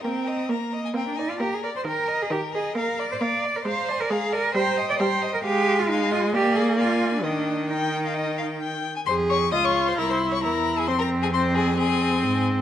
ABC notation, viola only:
X:1
M:4/4
L:1/8
Q:1/4=133
K:Eb
V:1 name="Viola"
B,2 B,2 B,2 B,2 | E,2 E,2 B,2 B,2 | A,2 A,2 G,2 G,2 | A,4 B,4 |
E,6- E, z | [K:Fm] A2 F2 =E2 E2 | C2 C2 C4 |]